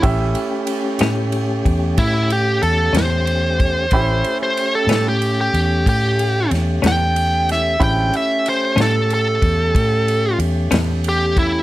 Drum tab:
RD |xxxxxxxxxxxx|xxxxxxxxxxxx|xxxxxxxxxxxx|
SD |---o-----o--|---o----oo-o|---o-----o--|
BD |o----oo----o|o-----o-----|o----oo----o|